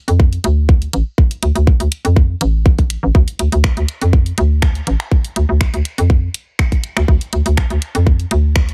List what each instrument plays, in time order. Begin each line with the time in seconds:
0.08 fm bass F2, closed hi-hat
0.20 kick
0.33 closed hi-hat
0.44 fm bass D2, closed hi-hat
0.69 kick
0.82 closed hi-hat
0.93 fm bass A1, closed hi-hat
1.18 kick
1.31 closed hi-hat
1.43 fm bass D2, closed hi-hat
1.55 fm bass D2, closed hi-hat
1.67 kick
1.80 fm bass D2, closed hi-hat
1.92 closed hi-hat
2.05 fm bass F2, closed hi-hat
2.16 kick
2.41 fm bass A1, closed hi-hat
2.66 kick
2.79 kick, closed hi-hat
2.90 closed hi-hat
3.03 fm bass A1
3.15 fm bass D2, kick
3.28 closed hi-hat
3.39 fm bass D2, closed hi-hat
3.52 fm bass D2, closed hi-hat
3.64 finger snap, kick
3.77 fm bass D2, closed hi-hat
3.88 closed hi-hat
4.01 fm bass F2, closed hi-hat
4.13 kick
4.26 closed hi-hat
4.38 fm bass D2, closed hi-hat
4.62 finger snap, kick
4.75 closed hi-hat
4.87 fm bass A1, closed hi-hat
5.00 finger snap
5.11 kick
5.25 closed hi-hat
5.36 fm bass D2, closed hi-hat
5.49 fm bass D2
5.61 finger snap, kick
5.74 fm bass D2, closed hi-hat
5.85 closed hi-hat
5.98 fm bass F2, closed hi-hat
6.10 kick
6.34 closed hi-hat
6.59 finger snap, kick
6.72 kick, closed hi-hat
6.84 closed hi-hat
6.97 fm bass D2, finger snap
7.08 fm bass D2, kick
7.21 closed hi-hat
7.33 fm bass D2, closed hi-hat
7.46 fm bass D2, closed hi-hat
7.57 finger snap, kick
7.70 fm bass D2, closed hi-hat
7.82 closed hi-hat
7.95 fm bass F2, closed hi-hat
8.07 kick
8.20 closed hi-hat
8.31 fm bass D2, closed hi-hat
8.56 finger snap, kick
8.69 closed hi-hat